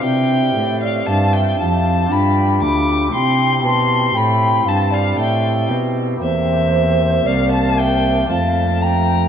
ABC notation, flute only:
X:1
M:3/4
L:1/16
Q:1/4=58
K:C
V:1 name="Flute"
e3 d f e f2 g2 b2 | g2 a2 g2 f d e2 z2 | [K:Cmix] c4 d f e2 f2 g2 |]